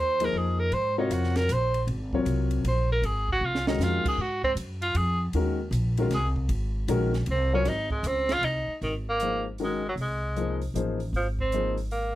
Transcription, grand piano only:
0.21 0.70 F3 medium
0.21 0.70 A#3 medium
0.21 0.70 D#4 medium
0.21 0.70 G#4 medium
0.21 0.70 C5 medium
0.98 1.47 C3 medium
0.98 1.47 F4 medium
0.98 1.47 F#4 medium
0.98 1.47 A#4 medium
0.98 1.47 C#5 medium
2.14 2.63 C3 medium
2.14 2.63 F#3 medium
2.14 2.63 F4 medium
2.14 2.63 A#4 medium
2.14 2.63 C#5 medium
3.68 4.17 D#3 medium
3.68 4.17 G#3 medium
3.68 4.17 C#4 medium
3.68 4.17 F#4 medium
3.68 4.17 A#4 medium
5.35 5.57 D#3 medium
5.35 5.58 G#3 medium
5.35 5.57 C#4 medium
5.35 5.58 F#4 medium
5.35 5.58 A#4 medium
5.98 6.10 D#3 medium
5.98 6.10 G#3 medium
5.98 6.10 C#4 medium
5.98 6.11 F#4 medium
5.98 6.11 A#4 medium
6.88 7.11 D#3 medium
6.88 7.11 G#3 medium
6.88 7.11 C#4 medium
6.88 7.11 F#4 medium
6.88 7.11 A#4 medium
7.53 7.65 F#3 medium
7.53 7.65 C4 medium
7.53 7.65 F4 medium
7.53 7.65 A#4 medium
7.53 7.65 C#5 medium
9.22 9.43 F3 medium
9.22 9.44 A#3 soft
9.22 9.44 D#4 soft
9.22 9.44 G#4 soft
9.22 9.44 C5 medium
9.60 9.82 D#3 medium
9.60 9.82 G#3 medium
9.60 9.82 C#4 medium
9.60 9.82 F#4 medium
9.60 9.82 A#4 medium
10.36 10.59 F3 medium
10.36 10.59 A#3 medium
10.36 10.59 D#4 medium
10.36 10.59 G#4 medium
10.36 10.59 C5 medium
10.75 10.97 F3 medium
10.75 10.97 A#3 medium
10.75 10.98 D#4 medium
10.75 10.98 G#4 medium
10.75 10.98 C5 medium
11.53 11.75 F3 medium
11.53 11.75 A#3 medium
11.53 11.75 D#4 medium
11.53 11.76 G#4 medium
11.53 11.76 C5 medium

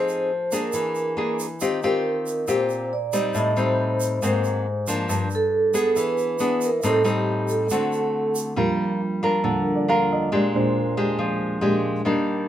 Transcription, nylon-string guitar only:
0.00 0.71 F3 medium
0.00 0.30 C4 soft
0.00 0.30 D#4 soft
0.00 0.30 G#4 medium
0.52 1.14 A#3 soft
0.52 1.14 D4 medium
0.52 1.14 G#4 medium
0.74 1.58 E3 medium
1.17 1.45 A#3 medium
1.17 1.45 D4 medium
1.17 1.45 G#4 medium
1.61 2.46 D#3 medium
1.61 1.79 C4 soft
1.61 1.79 F4 soft
1.61 1.79 G4 medium
1.83 2.45 C4 medium
1.83 2.45 F4 medium
1.83 2.45 G4 medium
2.48 3.33 A#2 medium
2.48 2.91 C4 soft
2.48 2.91 F4 soft
2.48 2.91 G4 medium
3.13 3.53 G3 medium
3.13 3.53 C4 medium
3.13 3.53 D#4 medium
3.35 4.20 A2 medium
3.56 4.18 G3 medium
3.56 4.19 C4 medium
3.56 4.19 D#4 medium
4.22 5.07 G#2 medium
4.22 4.65 F#3 soft
4.22 4.66 A#3 soft
4.22 4.66 C4 medium
4.88 5.27 F3 medium
4.88 5.28 A#3 medium
4.88 5.28 D4 medium
5.09 5.94 G2 medium
5.74 6.36 B3 medium
5.74 6.36 D4 medium
5.74 6.36 G#4 medium
5.96 6.81 E3 medium
6.40 6.69 B3 medium
6.40 6.69 D4 medium
6.40 6.69 G#4 medium
6.83 7.68 A2 medium
6.83 7.02 G3 medium
6.83 7.02 C4 medium
6.83 7.02 D#4 medium
7.04 7.67 G3 medium
7.04 7.67 C4 medium
7.04 7.67 D#4 medium
7.71 8.55 D3 medium
7.71 8.54 A3 soft
7.71 8.54 C4 soft
7.71 8.54 F#4 medium
8.56 9.42 G3 medium
8.56 9.00 D4 soft
8.56 9.00 F4 medium
8.56 9.01 A#4 medium
9.23 9.84 D4 medium
9.23 9.84 F4 medium
9.23 9.85 A#4 medium
9.44 10.29 D3 medium
9.88 10.28 D4 medium
9.88 10.28 F4 medium
9.88 10.29 A#4 medium
10.32 11.17 A#2 medium
10.32 10.93 G#3 soft
10.32 10.94 D4 medium
10.32 10.94 G4 medium
10.97 11.59 G#3 medium
10.97 11.59 D4 medium
10.97 11.59 G4 medium
11.19 12.03 F3 medium
11.61 12.02 G#3 medium
11.61 12.02 D4 soft
11.61 12.02 G4 medium
12.05 12.48 D#3 medium
12.05 12.48 G3 medium
12.05 12.48 A#3 medium
12.05 12.48 D4 medium

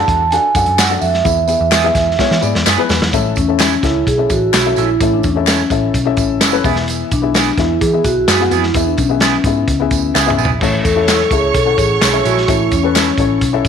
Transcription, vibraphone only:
0.00 0.32 A5 medium
0.31 0.80 G#5 loud
0.78 1.03 F#5 medium
1.01 2.38 E5 medium
3.37 3.85 C#4 medium
3.84 3.94 E4 medium
4.08 4.31 G#4 loud
4.31 4.79 F#4 loud
4.78 5.14 E4 loud
5.13 5.25 D4 medium
5.26 6.61 C#4 medium
7.12 7.60 D4 loud
7.58 7.82 E4 medium
7.81 8.05 G#4 loud
8.04 8.53 F#4 loud
8.51 8.87 E4 medium
8.85 8.97 D4 medium
8.97 10.34 C#4 medium
10.84 11.28 A4 loud
11.31 11.56 G#4 medium
11.55 11.79 A4 loud
11.78 12.21 G#4 loud
12.25 12.49 F#4 medium
12.73 13.68 C#4 medium

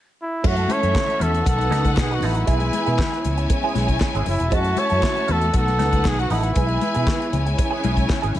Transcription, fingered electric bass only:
0.45 0.65 F#2 loud
0.83 0.93 F#2 loud
1.21 1.41 E2 medium
1.46 1.71 B1 loud
1.71 1.97 C#2 medium
1.97 2.18 B1 loud
2.22 2.43 A1 medium
2.48 2.69 B1 loud
2.87 2.97 B2 medium
3.25 3.45 C#2 loud
3.75 3.96 B1 medium
4.14 4.24 G#1 loud
4.26 4.37 F#1 medium
4.40 4.53 E1 medium
4.52 4.72 F#2 loud
4.91 5.01 F#2 loud
5.29 5.49 E2 loud
5.55 5.79 B1 loud
5.79 6.05 C#2 medium
6.05 6.26 B1 medium
6.30 6.51 A1 medium
6.56 6.77 B1 loud
6.96 7.05 B2 loud
7.33 7.53 C#2 loud
7.84 8.04 B1 medium
8.24 8.33 G#1 loud
8.35 8.40 F#1 medium

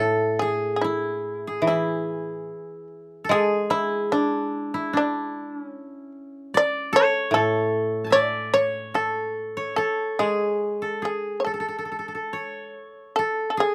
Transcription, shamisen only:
0.00 0.36 A4 medium
0.39 0.72 G#4 medium
0.76 0.82 G#4 soft
0.81 1.61 E4 medium
1.67 2.10 E4 soft
2.10 2.21 F4 soft
2.21 2.87 E4 soft
3.31 3.69 G#4 medium
3.71 4.09 E4 medium
4.12 4.90 D4 medium
4.97 6.12 D4 medium
6.57 6.92 D5 loud
6.96 7.32 C#5 medium
7.34 8.10 A4 medium
8.12 8.50 D5 medium
8.54 8.91 C#5 medium
8.95 9.74 A4 medium
9.76 10.16 A4 medium
10.19 10.73 G#4 medium
10.73 10.99 E4 medium
11.05 11.37 G#4 medium
11.40 11.44 C#5 soft
11.45 12.70 A4 soft
13.16 13.49 A4 medium
13.50 13.58 A4 soft
13.60 13.75 G#4 medium

